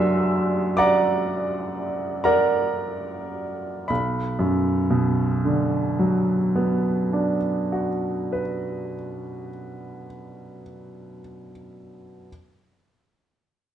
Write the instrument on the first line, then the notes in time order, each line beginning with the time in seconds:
grand piano
Already playing: F#2 F#3 D4 F#4 A#4 D5 E5 F#5 G#5 A#5 C6 D6 E6 F#6
0.77 D5 F#5 A#5 D6
2.24 A#4 D5 F#5 A#5
3.88 B1 B5
4.39 F#2
4.90 B2
5.45 D3
5.99 F#3
6.56 B3
7.13 D4
7.72 F#4
8.32 B4